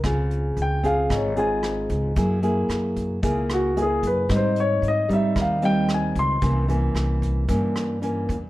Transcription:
<<
  \new Staff \with { instrumentName = "Grand piano" } { \time 4/4 \key des \lydian \tempo 4 = 113 r4 g''8 f''8 des''8 aes''4. | r2 r8 ges'8 aes'8 b'8 | c''8 des''8 ees''8 e''8 f''8 g''8 aes''8 c'''8~ | c'''8 r2. r8 | }
  \new Staff \with { instrumentName = "Nylon-string guitar" } { \time 4/4 \key des \lydian << { <c' f' aes'>4. <c' f' aes'>4 <c' f' aes'>4. | <bes fes' aes'>8 <bes fes' aes'>4. <bes fes' aes'>4 <bes fes' aes'>4 | <g c' ees'>4. <g c' ees'>4 <g c' ees'>4. | <e bes des'>8 <e bes des'>4. <e bes des'>4 <e bes des'>8 r8 | } \\ { des2 aes,2 | ges2 des2 | aes,2 ees2 | c2 g,2 | } >> }
  \new Staff \with { instrumentName = "Upright bass" } { \clef bass \time 4/4 \key des \lydian des,4 des,4 aes,,4. des,8 | ges,4 ges,4 des,4. ges,8 | aes,4 aes,4 ees,4. des,8 | c,4 c,4 g,4. e,8 | }
  \new DrumStaff \with { instrumentName = "Drums" } \drummode { \time 4/4 <hh bd ss>8 hh8 hh8 <hh bd>8 <hh bd ss>8 hh8 <hh ss>8 <hh bd>8 | <hh bd>8 hh8 <hh ss>8 <hh bd>8 <hh bd>8 <hh ss>8 hh8 <hh bd>8 | <hh bd ss>8 hh8 hh8 <hh bd>8 <hh bd ss>8 hh8 <hh ss>8 <hh bd>8 | <hh bd>8 hh8 <hh ss>8 <hh bd>8 <hh bd>8 <hh ss>8 hh8 <hh bd>8 | }
>>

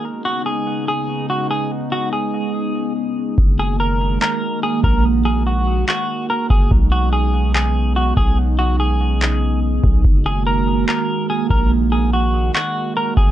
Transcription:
<<
  \new Staff \with { instrumentName = "Clean electric guitar" } { \time 4/4 \key fis \major \tempo 4 = 144 r8 fis'8 gis'4 gis'4 fis'8 gis'8 | r8 fis'8 gis'2 r4 | r8 gis'8 ais'4 ais'4 gis'8 ais'8 | r8 gis'8 fis'4 fis'4 ais'8 gis'8 |
r8 fis'8 gis'4 gis'4 fis'8 gis'8 | r8 fis'8 gis'2 r4 | r8 gis'8 ais'4 ais'4 gis'8 ais'8 | r8 gis'8 fis'4 fis'4 ais'8 gis'8 | }
  \new Staff \with { instrumentName = "Ambient pad" } { \time 4/4 \key fis \major << { <cis b dis'>1~ | <cis b dis'>1 | <dis ais fis'>1~ | <dis ais fis'>1 |
<cis b dis'>1~ | <cis b dis'>1 | <dis ais fis'>1~ | <dis ais fis'>1 | } \\ { gis1~ | gis1~ | gis1~ | gis1 |
gis1~ | gis1~ | gis1~ | gis1 | } >> }
  \new Staff \with { instrumentName = "808-style bass" } { \clef bass \time 4/4 \key fis \major r1 | r1 | fis,,2 r4. ais,,8~ | ais,,2 r4. fis,,8 |
b,,2.~ b,,8 b,,8~ | b,,2.~ b,,8 b,,8 | fis,,2 r4. ais,,8~ | ais,,2 r4. fis,,8 | }
  \new DrumStaff \with { instrumentName = "Drums" } \drummode { \time 4/4 r4 r4 r4 r4 | r4 r4 r4 r4 | bd4 r4 hc4 r8 bd8 | r4 r4 hc4 r8 bd8 |
bd4 r4 hc4 r8 bd8 | r4 r4 hc4 r8 bd8 | bd4 r4 hc4 r8 bd8 | r4 r4 hc4 r8 bd8 | }
>>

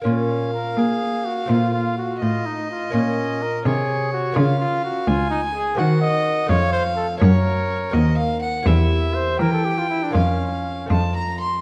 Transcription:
<<
  \new Staff \with { instrumentName = "Violin" } { \time 6/8 \key bes \minor \tempo 4. = 83 f''2.~ | f''4. ees''4.~ | ees''4. des''4. | f''4. aes''4. |
ges''4. f''4. | des''4. ees''8 f''8 ges''8 | e''4. g''4. | f''4. a''8 bes''8 c'''8 | }
  \new Staff \with { instrumentName = "Trumpet" } { \time 6/8 \key bes \minor des'4 bes'8 aes'4 ges'8 | f'8 f'8 ges'8 f'8 ees'8 f'8 | des'4 bes'8 aes'4 ges'8 | f'8 f'8 ges'8 f'8 ees'8 aes'8 |
ges'8 ees''4 des''8 c''8 a'8 | bes'2~ bes'8 r8 | e'4 c''8 bes'16 a'16 g'16 f'16 e'16 d'16 | des'4. r4. | }
  \new Staff \with { instrumentName = "Lute" } { \time 6/8 \key bes \minor <bes des' f'>2. | <a c' f'>2. | <bes des' f'>2. | <bes des' f'>2. |
<bes c' ges'>4. <a c' f'>4. | <bes des' ges'>4. <bes c' ges'>4. | <bes c' g'>2. | <bes des' f'>4. <a c' f'>4. | }
  \new Staff \with { instrumentName = "Lute" } { \clef bass \time 6/8 \key bes \minor bes,4. bes4. | bes,4. a,4. | bes,4. c4. | des4. r4. |
ees4. f,4. | ges,4. ees,4. | e,4. e4. | f,4. f,4. | }
  \new Staff \with { instrumentName = "Cello" } { \clef bass \time 6/8 \key bes \minor bes,4. bes4. | bes,4. a,4. | bes,4. c4. | des4. des,4. |
ees4. f,4. | ges,4. ees,4. | e,4. e4. | f,4. f,4. | }
>>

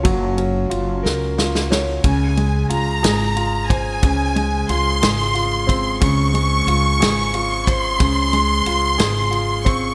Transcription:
<<
  \new Staff \with { instrumentName = "Violin section" } { \time 6/8 \key des \major \tempo 4. = 60 r2. | aes''4 bes''4. aes''8~ | aes''4 c'''2 | des'''2~ des'''8 c'''8~ |
c'''2~ c'''8 des'''8 | }
  \new Staff \with { instrumentName = "Felt piano" } { \time 6/8 \key des \major <ges f' bes' des''>8 des'8 f'8 bes'8 f'8 des''8 | des8 aes8 f'8 aes'8 f'8 c''8 | des8 aes8 f'8 aes'8 f'8 c'8 | des8 aes8 f'8 aes'8 f'8 c''8 |
des8 aes8 f'8 aes'8 f'8 c'8 | }
  \new Staff \with { instrumentName = "Upright bass" } { \clef bass \time 6/8 \key des \major ges,,4 ges,,8 des,4. | des,4 des,8 aes,,4. | des,4 des,8 aes,,4. | des,4 des,8 aes,,4. |
des,4 des,8 aes,,4. | }
  \new DrumStaff \with { instrumentName = "Drums" } \drummode { \time 6/8 <bd cymr>8 cymr8 cymr8 sn8 sn16 sn16 sn8 | <bd cymr>8 cymr8 cymr8 <cymr sn>8 cymr8 <bd cymr>8 | <bd cymr>8 cymr8 cymr8 <cymr sn>8 cymr8 <bd cymr>8 | <bd cymr>8 cymr8 cymr8 <cymr sn>8 cymr8 <bd cymr>8 |
<bd cymr>8 cymr8 cymr8 <cymr sn>8 cymr8 <bd cymr>8 | }
>>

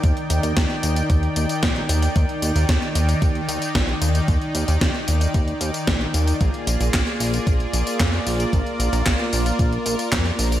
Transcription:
<<
  \new Staff \with { instrumentName = "Supersaw synth" } { \time 4/4 \key ees \major \tempo 4 = 113 << { <ees ees' g''>1~ | <ees ees' g''>1~ | <ees ees' g''>1 | <bes f' d''>1~ |
<bes f' d''>1 | } \\ { d''1~ | d''1~ | d''1 | aes'1 |
bes'1 | } >> }
  \new Staff \with { instrumentName = "Analog synth bass" } { \clef bass \time 4/4 \key ees \major ees,16 r16 ees,16 ees,16 ees,16 r16 ees,16 r16 ees,16 r16 ees,16 r16 bes,,16 r16 ees,16 r16 | ees,16 r16 ees,16 ees,16 ees,16 r16 ees,16 r16 ees,16 r16 ees,16 r16 bes,,16 r16 ees,16 r16 | ees,16 r16 ees,16 ees,16 ees,16 r16 ees,16 r16 ees,16 r16 ees,16 r16 bes,,16 r16 ees,16 r16 | bes,,16 r16 bes,,16 bes,,16 bes,,16 r16 bes,,16 r16 bes,,16 r16 bes,,16 r16 f,16 r16 bes,,16 r16 |
bes,,16 r16 bes,,16 bes,,16 bes,,16 r16 bes,,16 r16 bes,,16 r16 bes,,16 r16 f,16 r16 bes,,16 r16 | }
  \new DrumStaff \with { instrumentName = "Drums" } \drummode { \time 4/4 <hh bd tamb>16 hh16 <hh tamb>16 <hh tamb>16 <hh bd sn tamb>16 hh16 <hh tamb>16 <hh tamb>16 <hh bd tamb>16 hh16 <hh tamb>16 <hh tamb>16 <hh bd sn tamb>16 hh16 <hh tamb>16 <hh tamb>16 | <hh bd tamb>16 hh16 <hh tamb>16 <hh tamb>16 <hh bd sn tamb>16 hh16 <hh tamb>16 <hh tamb>16 <hh bd tamb>16 hh16 <hh tamb>16 <hh tamb>16 <hh bd sn tamb>16 hh16 <hh tamb>16 <hh tamb>16 | <hh bd tamb>16 hh16 <hh tamb>16 <hh tamb>16 <hh bd sn tamb>16 hh16 <hh tamb>16 <hh tamb>16 <hh bd tamb>16 hh16 <hh tamb>16 <hh tamb>16 <hh bd sn tamb>16 hh16 <hh tamb>16 <hh tamb>16 | <hh bd tamb>16 hh16 <hh tamb>16 <hh tamb>16 <hc hh bd sn tamb>16 hh16 <hho tamb>16 <hh tamb>16 <hh bd tamb>16 hh16 <hh tamb>16 <hh tamb>16 <hc hh bd sn tamb>16 hh16 <hho tamb>16 <hh tamb>16 |
<hh bd tamb>16 hh16 <hh tamb>16 <hh tamb>16 <hc hh bd sn tamb>16 hh16 <hho tamb>16 <hh tamb>16 <hh bd tamb>16 hh16 <hh tamb>16 <hh tamb>16 <hc hh bd sn tamb>16 hh16 <hho tamb>16 <hh tamb>16 | }
>>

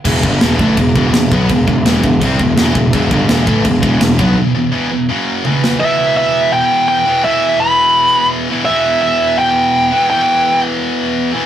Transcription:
<<
  \new Staff \with { instrumentName = "Lead electric guitar" } { \time 4/4 \key e \minor \tempo 4 = 168 r1 | r1 | r1 | r1 |
e''4 e''4 g''4 g''4 | e''4 b''2 r4 | e''4 e''4 g''2 | g''4. r2 r8 | }
  \new Staff \with { instrumentName = "Distorted electric guitar" } { \clef bass \time 4/4 \key e \minor <e, b, e>8 <g, d g>8 <e, b, e>8 <a, e a>8 <e, b,>8 <e, b, e>8 <e, b,>8 <b, fis b>8 | <e, b,>8 <e, b,>8 <e, b, e>8 <e, b,>8 <c g c'>8 <e, b,>8 <e, b, e>8 <e, b,>8 | <e, b, e>8 <g, d g>8 <e, b, e>8 <a, e a>8 <e, b,>8 <e, b, e>8 <e, b,>8 <b, fis b>8 | <e, b,>8 <e, b,>8 <e, b, e>8 <e, b,>8 <fis, cis fis>4 <e, b, e>4 |
<e, b, e>2.~ <e, b, e>8 <e, b, e>8 | <e, b, e>2.~ <e, b, e>8 <e, b, e>8 | <e, b, e>2.~ <e, b, e>8 <e, b, e>8 | <e, b, e>2.~ <e, b, e>8 <e, b, e>8 | }
  \new Staff \with { instrumentName = "Picked electric bass" } { \clef bass \time 4/4 \key e \minor e,,8 g,,8 e,,8 a,,8 e,,8 e,,8 e,,8 b,,8 | e,,8 e,,8 e,,8 e,,8 c,8 e,,8 e,,8 e,,8 | e,,8 g,,8 e,,8 a,,8 e,,8 e,,8 e,,8 b,,8 | r1 |
r1 | r1 | r1 | r1 | }
  \new DrumStaff \with { instrumentName = "Drums" } \drummode { \time 4/4 <cymc bd>8 bd8 <cymc sn>8 bd8 <cymc bd>8 bd8 <cymc sn>8 bd8 | <cymc bd>8 bd8 <cymc sn>8 bd8 <cymc bd>8 bd8 <cymc sn>8 bd8 | <cymc bd>8 bd8 <cymc sn>8 bd8 <cymc bd>8 bd8 <cymc sn>8 bd8 | r4 r4 r4 tommh8 sn8 |
r4 r4 r4 r4 | r4 r4 r4 r4 | r4 r4 r4 r4 | r4 r4 r4 r4 | }
>>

